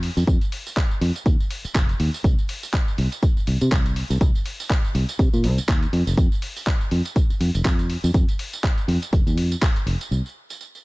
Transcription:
0.03 open hi-hat
0.17 F2, tambourine
0.27 F2, kick, closed hi-hat, tambourine
0.41 closed hi-hat, tambourine
0.52 open hi-hat
0.66 tambourine
0.77 kick, clap, closed hi-hat, tambourine
0.91 tambourine
1.01 F2, open hi-hat
1.16 closed hi-hat, tambourine
1.26 D#2, kick, closed hi-hat, tambourine
1.40 tambourine
1.50 open hi-hat
1.64 muted fingered electric bass stroke, closed hi-hat, tambourine
1.75 F1, kick, clap, closed hi-hat, tambourine
1.89 closed hi-hat, tambourine
2.00 D#2, open hi-hat
2.14 tambourine
2.24 C2, kick, closed hi-hat, tambourine
2.39 tambourine
2.49 open hi-hat
2.63 tambourine
2.73 kick, clap, closed hi-hat
2.88 tambourine
2.98 C2, open hi-hat
3.12 closed hi-hat, tambourine
3.23 kick, closed hi-hat, tambourine
3.37 muted fingered electric bass stroke, tambourine
3.47 C2, open hi-hat
3.61 C3, closed hi-hat, tambourine
3.72 C2, kick, clap, closed hi-hat, tambourine
3.86 closed hi-hat, tambourine
3.96 open hi-hat
4.10 C2, tambourine
4.21 C2, kick, closed hi-hat, tambourine
4.35 tambourine
4.46 open hi-hat
4.60 tambourine
4.70 kick, clap, closed hi-hat
4.84 tambourine
4.95 C2, open hi-hat
5.09 closed hi-hat, tambourine
5.19 C3, kick, closed hi-hat, tambourine
5.33 A#2, tambourine
5.44 C2, open hi-hat
5.58 muted fingered electric bass stroke, closed hi-hat, tambourine
5.68 D#2, kick, clap, closed hi-hat
5.83 closed hi-hat, tambourine
5.93 F2, open hi-hat
6.07 F1, tambourine
6.17 F2, kick, closed hi-hat, tambourine
6.32 tambourine
6.42 open hi-hat
6.56 tambourine
6.67 kick, clap, closed hi-hat, tambourine
6.81 tambourine
6.91 F2, open hi-hat
7.05 closed hi-hat, tambourine
7.16 kick, closed hi-hat, tambourine
7.30 muted fingered electric bass stroke, tambourine
7.40 F2, open hi-hat
7.55 F1, closed hi-hat, tambourine
7.65 F2, kick, clap, closed hi-hat, tambourine
7.79 closed hi-hat, tambourine
7.90 open hi-hat
8.04 F2, tambourine
8.14 F2, kick, closed hi-hat, tambourine
8.28 closed hi-hat, tambourine
8.39 open hi-hat
8.53 closed hi-hat, tambourine
8.64 kick, clap, closed hi-hat, tambourine
8.78 closed hi-hat, tambourine
8.88 F2, open hi-hat
9.02 closed hi-hat, tambourine
9.13 F1, kick, closed hi-hat, tambourine
9.27 D#2, closed hi-hat, tambourine
9.37 F2, open hi-hat
9.52 closed hi-hat, tambourine
9.62 kick, clap, closed hi-hat, tambourine
9.76 closed hi-hat, tambourine
9.86 F1, open hi-hat
10.01 closed hi-hat, tambourine
10.11 C2, tambourine
10.26 tambourine
10.50 tambourine
10.61 tambourine
10.75 tambourine

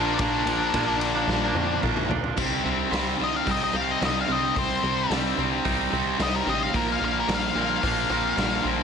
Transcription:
Already playing: A#1 A#2 F3 A#3 D4 D5
0.06 F3 A#3 D4
0.19 A#1 A#2 F3 A#3 D4 D5, kick, ride
0.45 A#1 A#2 F3 A#3 D4, ride
0.61 F3 A#3 D4
0.74 A#1 A#2 F3 A#3 D4, kick, ride
1.01 muted clean electric guitar stroke, ride
1.15 F3 A#3 D4
1.27 A#1, snare
1.42 F3 A#3 D4
1.54 F2 A#2 F3 A#3 D4, high tom
1.81 A#1 A#2 F3 A#3 D4, kick, mid tom
1.96 F3 A#3 D4, mid tom
2.09 B1 A#2 F3 A#3 D4, floor tom
2.23 F3 A#3 D4, floor tom
2.36 C2 C3 G3 C4, kick, crash
2.64 C2 C3 G3 C4
2.89 C2 C3 G3 C4, open hi-hat
2.94 snare
3.18 C2 C3 G3 C4
3.24 D#5
3.36 F5
3.46 C2 C3 G3 C4 D#4, kick, open hi-hat
3.51 D#5
3.64 D#5
3.72 C2 C3 G3 C4 F5
3.91 D#5
4.00 C2 C3 G3 C4, snare, open hi-hat
4.05 D#5
4.21 F5
4.27 C2 C3 G3 C4
4.32 D#5
4.55 C2 C3 G3 C4 C5, kick, open hi-hat
4.83 C2 C3 G3 C4
5.09 C2 C3 G3 C4, snare, open hi-hat
5.36 C2 C3 G3 C4
5.64 C2 C3 G3 C4 D#4, kick, open hi-hat
5.91 C2 C3 G3 C4
6.18 C2 C3 G3 C4, snare, open hi-hat
6.22 D#5
6.36 A#4
6.45 A1 C3 G3 C4
6.49 D#5
6.63 F5
6.72 A#1 A#2 F3 A#3 A#4, kick, open hi-hat
6.92 F5
6.99 A#1 A#2 D3 F3 A#3
7.05 F5
7.20 A#4
7.27 A#1 A#2 F3 A#3, snare, open hi-hat
7.35 F5
7.55 A#1 A#2 F3 A#3 C4
7.62 F5
7.83 A#1 A#2 F3 A#3 D4, kick, open hi-hat
8.10 A#1 A#2 F3 A#3 C4
8.37 A#1 A#2 D3 F3, snare, open hi-hat
8.41 A#3
8.63 A#1 A#2 F3 C4
8.67 F3 A#3

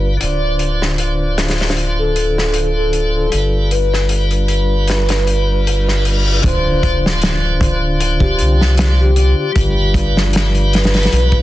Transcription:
Already playing: G1 G3 D4 F4 B4
0.17 D3 D4, closed hi-hat
0.22 D1 F4 C5 D5
0.59 closed hi-hat
0.82 snare
0.98 closed hi-hat
1.38 snare, closed hi-hat
1.48 snare, closed hi-hat
1.58 snare, closed hi-hat
1.68 snare, closed hi-hat
1.77 closed hi-hat
1.99 A4
2.16 closed hi-hat
2.38 snare
2.54 closed hi-hat
2.76 A4
2.93 closed hi-hat
3.15 A4
3.29 G1 G3 D4, closed hi-hat
3.35 F4 B4
3.71 B4, closed hi-hat
3.94 snare
4.09 closed hi-hat
4.31 B4, closed hi-hat
4.48 closed hi-hat
4.88 snare, closed hi-hat, reverse cymbal
5.09 snare, closed hi-hat
5.27 closed hi-hat
5.67 closed hi-hat
5.88 snare
6.05 closed hi-hat
6.41 D1 D3 D4, kick, closed hi-hat, impact
6.45 F4 C5
6.83 kick, closed hi-hat
7.06 snare
7.22 snare, closed hi-hat
7.61 kick, closed hi-hat
8.01 closed hi-hat
8.20 G4, kick
8.39 C2, closed hi-hat
8.61 snare
8.77 snare, closed hi-hat
9.00 G4
9.16 D3 D4 F4 C5, closed hi-hat
9.39 G4
9.52 G1 G3 D4, kick, closed hi-hat
9.58 F4 B4
9.94 B4, kick, closed hi-hat
10.17 snare
10.33 snare, closed hi-hat
10.55 B4, closed hi-hat
10.73 snare, closed hi-hat
10.84 snare, closed hi-hat
10.94 snare, closed hi-hat
11.03 snare, closed hi-hat
11.12 B1, closed hi-hat
11.32 kick

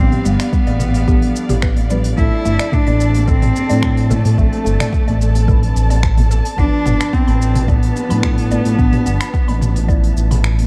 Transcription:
Already playing: F3 G3 B3 C4 G4 D5 F5
0.00 D4 G4
0.12 mid tom, open hi-hat, djembe tone
0.25 G1 G3 B3, shaker
0.40 D5, finger snap, open hi-hat, shaker
0.53 G3, kick, shaker
0.67 A1 D5, open hi-hat, djembe slap, djembe bass
0.79 mid tom, djembe tone, shaker
0.94 open hi-hat, djembe slap, djembe tone, shaker
1.06 F3 G3 B3 D4 G4, kick, shaker
1.10 A4
1.22 open hi-hat
1.36 shaker
1.49 A1 G4, mid tom, open hi-hat, djembe slap, djembe tone, shaker
1.62 B4, finger snap, kick, shaker
1.77 open hi-hat, djembe bass
1.90 F3 G3 B3 D4 B4, djembe slap, shaker
2.04 open hi-hat, shaker
2.16 A1 F3 A3 C4 D4 E4 A4 A5, kick, shaker
2.20 A4
2.45 G1 A3, shaker
2.59 D5, finger snap, open hi-hat, shaker
2.72 A3 D4, kick, mid tom, shaker
2.87 A1 D5, open hi-hat, djembe slap, djembe bass
3.00 shaker
3.14 open hi-hat, djembe slap, djembe tone, shaker
3.28 C4 A4, kick, shaker
3.42 mid tom, open hi-hat
3.56 djembe tone, shaker
3.68 A2 F3 A3 C4 D4 D5, open hi-hat, shaker
3.73 A4
3.83 finger snap, kick, shaker
3.97 open hi-hat
4.10 A3 A4, mid tom, djembe bass, shaker
4.25 A2, open hi-hat, djembe slap, shaker
4.37 A1 F3 A3 C4 D4, kick, shaker
4.41 A4
4.53 open hi-hat, djembe tone
4.65 G1 A3, shaker
4.80 D5, finger snap, mid tom, open hi-hat, shaker
4.93 A3, kick, shaker
5.08 A1 D5, open hi-hat, djembe slap, djembe bass
5.20 djembe tone, shaker
5.35 open hi-hat, djembe slap, djembe tone, shaker
5.46 F3 A3 C4 D4 A4, kick, mid tom, shaker
5.50 B4
5.63 open hi-hat
5.76 A1, shaker
5.89 D5, open hi-hat, djembe slap, djembe tone, shaker
6.03 finger snap, kick, shaker
6.18 mid tom, open hi-hat, djembe bass
6.31 A4, djembe slap, shaker
6.45 open hi-hat, shaker
6.57 A1 F3 B3 D4 B4, kick, shaker
6.86 G1 B3, mid tom, shaker
7.00 B5, finger snap, open hi-hat, shaker
7.13 B3 C4, kick, shaker
7.27 A1 B5, open hi-hat, djembe slap, djembe bass
7.42 shaker
7.55 mid tom, open hi-hat, djembe slap, djembe tone, shaker
7.68 B3 D5, kick, shaker
7.83 open hi-hat
7.96 djembe tone, shaker
8.09 A2 F3 B3 D4 B5, open hi-hat, shaker
8.23 finger snap, kick, mid tom, shaker
8.38 open hi-hat
8.51 D5, djembe bass, shaker
8.65 A2, open hi-hat, djembe slap, shaker
8.77 A1 F3 B3 D4, kick, shaker
8.93 mid tom, open hi-hat, djembe tone
9.06 G1 B3, shaker
9.20 B5, finger snap, open hi-hat, shaker
9.34 B3, kick, shaker
9.48 A1 B5, open hi-hat, djembe slap, djembe bass
9.61 mid tom, djembe tone, shaker
9.76 open hi-hat, djembe slap, djembe tone, shaker
9.87 F3 B3 D5, kick, shaker
9.91 E4
10.04 open hi-hat
10.17 A1, shaker
10.31 B5, mid tom, open hi-hat, djembe slap, djembe tone, shaker
10.44 finger snap, shaker
10.59 open hi-hat, djembe bass

